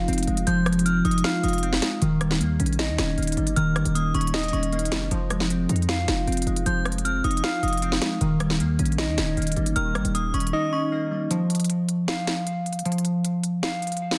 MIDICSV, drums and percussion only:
0, 0, Header, 1, 2, 480
1, 0, Start_track
1, 0, Tempo, 387097
1, 580, Time_signature, 4, 2, 24, 8
1, 17583, End_track
2, 0, Start_track
2, 0, Title_t, "Drums"
2, 100, Note_on_c, 9, 42, 49
2, 160, Note_off_c, 9, 42, 0
2, 160, Note_on_c, 9, 42, 63
2, 221, Note_off_c, 9, 42, 0
2, 221, Note_on_c, 9, 42, 72
2, 281, Note_off_c, 9, 42, 0
2, 281, Note_on_c, 9, 42, 80
2, 341, Note_off_c, 9, 42, 0
2, 341, Note_on_c, 9, 42, 51
2, 461, Note_off_c, 9, 42, 0
2, 461, Note_on_c, 9, 42, 87
2, 581, Note_off_c, 9, 42, 0
2, 581, Note_on_c, 9, 42, 87
2, 705, Note_off_c, 9, 42, 0
2, 820, Note_on_c, 9, 37, 97
2, 821, Note_on_c, 9, 42, 49
2, 899, Note_off_c, 9, 42, 0
2, 899, Note_on_c, 9, 42, 66
2, 944, Note_off_c, 9, 37, 0
2, 980, Note_off_c, 9, 42, 0
2, 980, Note_on_c, 9, 42, 79
2, 1064, Note_off_c, 9, 42, 0
2, 1064, Note_on_c, 9, 42, 92
2, 1188, Note_off_c, 9, 42, 0
2, 1300, Note_on_c, 9, 42, 45
2, 1380, Note_off_c, 9, 42, 0
2, 1380, Note_on_c, 9, 42, 62
2, 1460, Note_off_c, 9, 42, 0
2, 1460, Note_on_c, 9, 42, 72
2, 1540, Note_on_c, 9, 38, 108
2, 1542, Note_off_c, 9, 42, 0
2, 1542, Note_on_c, 9, 42, 75
2, 1664, Note_off_c, 9, 38, 0
2, 1666, Note_off_c, 9, 42, 0
2, 1779, Note_on_c, 9, 42, 62
2, 1840, Note_off_c, 9, 42, 0
2, 1840, Note_on_c, 9, 42, 59
2, 1900, Note_off_c, 9, 42, 0
2, 1900, Note_on_c, 9, 42, 59
2, 1960, Note_off_c, 9, 42, 0
2, 1960, Note_on_c, 9, 42, 61
2, 2020, Note_off_c, 9, 42, 0
2, 2020, Note_on_c, 9, 42, 78
2, 2141, Note_on_c, 9, 38, 74
2, 2144, Note_off_c, 9, 42, 0
2, 2258, Note_on_c, 9, 42, 89
2, 2259, Note_off_c, 9, 38, 0
2, 2259, Note_on_c, 9, 38, 112
2, 2382, Note_off_c, 9, 42, 0
2, 2383, Note_off_c, 9, 38, 0
2, 2500, Note_on_c, 9, 42, 84
2, 2624, Note_off_c, 9, 42, 0
2, 2738, Note_on_c, 9, 42, 85
2, 2739, Note_on_c, 9, 37, 98
2, 2861, Note_on_c, 9, 38, 65
2, 2862, Note_off_c, 9, 42, 0
2, 2863, Note_off_c, 9, 37, 0
2, 2985, Note_off_c, 9, 38, 0
2, 2985, Note_on_c, 9, 42, 84
2, 3109, Note_off_c, 9, 42, 0
2, 3220, Note_on_c, 9, 42, 72
2, 3300, Note_off_c, 9, 42, 0
2, 3300, Note_on_c, 9, 42, 60
2, 3380, Note_off_c, 9, 42, 0
2, 3380, Note_on_c, 9, 42, 42
2, 3460, Note_on_c, 9, 38, 107
2, 3462, Note_off_c, 9, 42, 0
2, 3462, Note_on_c, 9, 42, 75
2, 3584, Note_off_c, 9, 38, 0
2, 3586, Note_off_c, 9, 42, 0
2, 3700, Note_on_c, 9, 42, 78
2, 3701, Note_on_c, 9, 38, 101
2, 3824, Note_off_c, 9, 42, 0
2, 3825, Note_off_c, 9, 38, 0
2, 3939, Note_on_c, 9, 42, 47
2, 3999, Note_off_c, 9, 42, 0
2, 3999, Note_on_c, 9, 42, 62
2, 4059, Note_off_c, 9, 42, 0
2, 4059, Note_on_c, 9, 42, 72
2, 4119, Note_off_c, 9, 42, 0
2, 4119, Note_on_c, 9, 42, 79
2, 4180, Note_off_c, 9, 42, 0
2, 4180, Note_on_c, 9, 42, 51
2, 4300, Note_off_c, 9, 42, 0
2, 4300, Note_on_c, 9, 42, 85
2, 4420, Note_off_c, 9, 42, 0
2, 4420, Note_on_c, 9, 42, 87
2, 4544, Note_off_c, 9, 42, 0
2, 4660, Note_on_c, 9, 37, 99
2, 4661, Note_on_c, 9, 42, 49
2, 4779, Note_off_c, 9, 42, 0
2, 4779, Note_on_c, 9, 42, 81
2, 4784, Note_off_c, 9, 37, 0
2, 4903, Note_off_c, 9, 42, 0
2, 4904, Note_on_c, 9, 42, 91
2, 5028, Note_off_c, 9, 42, 0
2, 5139, Note_on_c, 9, 42, 45
2, 5220, Note_off_c, 9, 42, 0
2, 5220, Note_on_c, 9, 42, 60
2, 5299, Note_off_c, 9, 42, 0
2, 5299, Note_on_c, 9, 42, 74
2, 5379, Note_off_c, 9, 42, 0
2, 5379, Note_on_c, 9, 38, 108
2, 5379, Note_on_c, 9, 42, 65
2, 5440, Note_off_c, 9, 42, 0
2, 5440, Note_on_c, 9, 42, 65
2, 5500, Note_off_c, 9, 42, 0
2, 5500, Note_on_c, 9, 42, 61
2, 5503, Note_off_c, 9, 38, 0
2, 5560, Note_off_c, 9, 42, 0
2, 5560, Note_on_c, 9, 42, 63
2, 5619, Note_off_c, 9, 42, 0
2, 5619, Note_on_c, 9, 42, 44
2, 5739, Note_off_c, 9, 42, 0
2, 5739, Note_on_c, 9, 42, 74
2, 5859, Note_off_c, 9, 42, 0
2, 5859, Note_on_c, 9, 42, 50
2, 5939, Note_off_c, 9, 42, 0
2, 5939, Note_on_c, 9, 42, 66
2, 6019, Note_off_c, 9, 42, 0
2, 6019, Note_on_c, 9, 42, 80
2, 6097, Note_off_c, 9, 42, 0
2, 6097, Note_on_c, 9, 42, 93
2, 6098, Note_on_c, 9, 38, 113
2, 6221, Note_off_c, 9, 42, 0
2, 6222, Note_off_c, 9, 38, 0
2, 6339, Note_on_c, 9, 42, 82
2, 6463, Note_off_c, 9, 42, 0
2, 6577, Note_on_c, 9, 42, 86
2, 6578, Note_on_c, 9, 37, 95
2, 6700, Note_on_c, 9, 38, 65
2, 6701, Note_off_c, 9, 42, 0
2, 6702, Note_off_c, 9, 37, 0
2, 6823, Note_on_c, 9, 42, 86
2, 6824, Note_off_c, 9, 38, 0
2, 6947, Note_off_c, 9, 42, 0
2, 7059, Note_on_c, 9, 42, 73
2, 7140, Note_off_c, 9, 42, 0
2, 7140, Note_on_c, 9, 42, 58
2, 7220, Note_off_c, 9, 42, 0
2, 7220, Note_on_c, 9, 42, 43
2, 7300, Note_on_c, 9, 38, 112
2, 7302, Note_off_c, 9, 42, 0
2, 7302, Note_on_c, 9, 42, 74
2, 7424, Note_off_c, 9, 38, 0
2, 7426, Note_off_c, 9, 42, 0
2, 7539, Note_on_c, 9, 42, 76
2, 7540, Note_on_c, 9, 38, 96
2, 7663, Note_off_c, 9, 42, 0
2, 7664, Note_off_c, 9, 38, 0
2, 7780, Note_on_c, 9, 42, 49
2, 7841, Note_off_c, 9, 42, 0
2, 7841, Note_on_c, 9, 42, 60
2, 7901, Note_off_c, 9, 42, 0
2, 7901, Note_on_c, 9, 42, 71
2, 7960, Note_off_c, 9, 42, 0
2, 7960, Note_on_c, 9, 42, 81
2, 8021, Note_off_c, 9, 42, 0
2, 8021, Note_on_c, 9, 42, 52
2, 8140, Note_off_c, 9, 42, 0
2, 8140, Note_on_c, 9, 42, 83
2, 8260, Note_off_c, 9, 42, 0
2, 8260, Note_on_c, 9, 42, 85
2, 8384, Note_off_c, 9, 42, 0
2, 8500, Note_on_c, 9, 37, 96
2, 8500, Note_on_c, 9, 42, 50
2, 8580, Note_off_c, 9, 42, 0
2, 8580, Note_on_c, 9, 42, 66
2, 8624, Note_off_c, 9, 37, 0
2, 8660, Note_off_c, 9, 42, 0
2, 8660, Note_on_c, 9, 42, 80
2, 8744, Note_off_c, 9, 42, 0
2, 8744, Note_on_c, 9, 42, 92
2, 8868, Note_off_c, 9, 42, 0
2, 8981, Note_on_c, 9, 42, 45
2, 9061, Note_off_c, 9, 42, 0
2, 9061, Note_on_c, 9, 42, 59
2, 9141, Note_off_c, 9, 42, 0
2, 9141, Note_on_c, 9, 42, 73
2, 9222, Note_on_c, 9, 38, 112
2, 9224, Note_off_c, 9, 42, 0
2, 9224, Note_on_c, 9, 42, 75
2, 9346, Note_off_c, 9, 38, 0
2, 9348, Note_off_c, 9, 42, 0
2, 9461, Note_on_c, 9, 42, 61
2, 9520, Note_off_c, 9, 42, 0
2, 9520, Note_on_c, 9, 42, 59
2, 9581, Note_off_c, 9, 42, 0
2, 9581, Note_on_c, 9, 42, 62
2, 9640, Note_off_c, 9, 42, 0
2, 9640, Note_on_c, 9, 42, 61
2, 9700, Note_off_c, 9, 42, 0
2, 9700, Note_on_c, 9, 42, 78
2, 9821, Note_on_c, 9, 38, 73
2, 9824, Note_off_c, 9, 42, 0
2, 9939, Note_on_c, 9, 42, 89
2, 9940, Note_off_c, 9, 38, 0
2, 9940, Note_on_c, 9, 38, 112
2, 10063, Note_off_c, 9, 42, 0
2, 10064, Note_off_c, 9, 38, 0
2, 10180, Note_on_c, 9, 42, 86
2, 10304, Note_off_c, 9, 42, 0
2, 10419, Note_on_c, 9, 42, 84
2, 10420, Note_on_c, 9, 37, 99
2, 10541, Note_on_c, 9, 38, 67
2, 10543, Note_off_c, 9, 42, 0
2, 10544, Note_off_c, 9, 37, 0
2, 10664, Note_on_c, 9, 42, 84
2, 10665, Note_off_c, 9, 38, 0
2, 10788, Note_off_c, 9, 42, 0
2, 10900, Note_on_c, 9, 42, 74
2, 10980, Note_off_c, 9, 42, 0
2, 10980, Note_on_c, 9, 42, 58
2, 11061, Note_off_c, 9, 42, 0
2, 11061, Note_on_c, 9, 42, 43
2, 11140, Note_on_c, 9, 38, 109
2, 11142, Note_off_c, 9, 42, 0
2, 11142, Note_on_c, 9, 42, 78
2, 11264, Note_off_c, 9, 38, 0
2, 11266, Note_off_c, 9, 42, 0
2, 11380, Note_on_c, 9, 42, 79
2, 11381, Note_on_c, 9, 38, 100
2, 11504, Note_off_c, 9, 42, 0
2, 11505, Note_off_c, 9, 38, 0
2, 11621, Note_on_c, 9, 42, 49
2, 11680, Note_off_c, 9, 42, 0
2, 11680, Note_on_c, 9, 42, 61
2, 11740, Note_off_c, 9, 42, 0
2, 11740, Note_on_c, 9, 42, 69
2, 11801, Note_off_c, 9, 42, 0
2, 11801, Note_on_c, 9, 42, 83
2, 11860, Note_off_c, 9, 42, 0
2, 11860, Note_on_c, 9, 42, 51
2, 11981, Note_off_c, 9, 42, 0
2, 11981, Note_on_c, 9, 42, 86
2, 12101, Note_off_c, 9, 42, 0
2, 12101, Note_on_c, 9, 42, 85
2, 12225, Note_off_c, 9, 42, 0
2, 12340, Note_on_c, 9, 37, 97
2, 12341, Note_on_c, 9, 42, 50
2, 12460, Note_off_c, 9, 42, 0
2, 12460, Note_on_c, 9, 42, 79
2, 12464, Note_off_c, 9, 37, 0
2, 12584, Note_off_c, 9, 42, 0
2, 12584, Note_on_c, 9, 42, 91
2, 12708, Note_off_c, 9, 42, 0
2, 12820, Note_on_c, 9, 42, 45
2, 12900, Note_off_c, 9, 42, 0
2, 12900, Note_on_c, 9, 42, 59
2, 12980, Note_off_c, 9, 42, 0
2, 12980, Note_on_c, 9, 42, 76
2, 13104, Note_off_c, 9, 42, 0
2, 14020, Note_on_c, 9, 42, 82
2, 14144, Note_off_c, 9, 42, 0
2, 14260, Note_on_c, 9, 42, 66
2, 14320, Note_off_c, 9, 42, 0
2, 14320, Note_on_c, 9, 42, 64
2, 14379, Note_off_c, 9, 42, 0
2, 14379, Note_on_c, 9, 42, 64
2, 14439, Note_off_c, 9, 42, 0
2, 14439, Note_on_c, 9, 42, 64
2, 14503, Note_off_c, 9, 42, 0
2, 14503, Note_on_c, 9, 42, 83
2, 14627, Note_off_c, 9, 42, 0
2, 14738, Note_on_c, 9, 42, 77
2, 14862, Note_off_c, 9, 42, 0
2, 14980, Note_on_c, 9, 38, 108
2, 14981, Note_on_c, 9, 42, 80
2, 15104, Note_off_c, 9, 38, 0
2, 15105, Note_off_c, 9, 42, 0
2, 15219, Note_on_c, 9, 42, 76
2, 15220, Note_on_c, 9, 38, 98
2, 15343, Note_off_c, 9, 42, 0
2, 15344, Note_off_c, 9, 38, 0
2, 15459, Note_on_c, 9, 42, 81
2, 15583, Note_off_c, 9, 42, 0
2, 15700, Note_on_c, 9, 42, 51
2, 15780, Note_off_c, 9, 42, 0
2, 15780, Note_on_c, 9, 42, 54
2, 15859, Note_off_c, 9, 42, 0
2, 15859, Note_on_c, 9, 42, 65
2, 15940, Note_off_c, 9, 42, 0
2, 15940, Note_on_c, 9, 42, 72
2, 16019, Note_off_c, 9, 42, 0
2, 16019, Note_on_c, 9, 42, 76
2, 16100, Note_off_c, 9, 42, 0
2, 16100, Note_on_c, 9, 42, 81
2, 16178, Note_off_c, 9, 42, 0
2, 16178, Note_on_c, 9, 42, 81
2, 16302, Note_off_c, 9, 42, 0
2, 16424, Note_on_c, 9, 42, 81
2, 16548, Note_off_c, 9, 42, 0
2, 16660, Note_on_c, 9, 42, 77
2, 16784, Note_off_c, 9, 42, 0
2, 16901, Note_on_c, 9, 38, 107
2, 16903, Note_on_c, 9, 42, 80
2, 17025, Note_off_c, 9, 38, 0
2, 17027, Note_off_c, 9, 42, 0
2, 17140, Note_on_c, 9, 42, 60
2, 17199, Note_off_c, 9, 42, 0
2, 17199, Note_on_c, 9, 42, 59
2, 17259, Note_off_c, 9, 42, 0
2, 17259, Note_on_c, 9, 42, 59
2, 17319, Note_off_c, 9, 42, 0
2, 17319, Note_on_c, 9, 42, 59
2, 17443, Note_off_c, 9, 42, 0
2, 17500, Note_on_c, 9, 38, 71
2, 17583, Note_off_c, 9, 38, 0
2, 17583, End_track
0, 0, End_of_file